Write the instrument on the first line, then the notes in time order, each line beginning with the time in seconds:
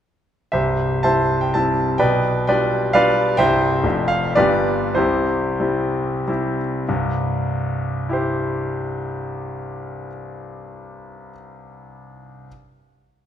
grand piano
0.52 C1 C2 G4 C5 E5
1.03 G3 C4 E4 C5 E5 A5
1.41 G5
1.54 G3 C4 E4 A5
1.98 B1 B2 B4 D5 G5
2.47 G3 D4 F4 B4 D5 G5
2.93 G3 D4 F4 B4 D5 F5
3.37 C1 C2 G3 C4 E4 C5 E5 G5
3.83 F1 F2 A3 D4 F4
4.08 F5
4.35 G1 G2 G3 B3 F4 G4 B4 D5
4.95 C2 C3 E4 G4 C5
5.60 G3 C4 E4
6.27 G3 C4 E4
6.88 C2 G2
8.09 E4 G4 C5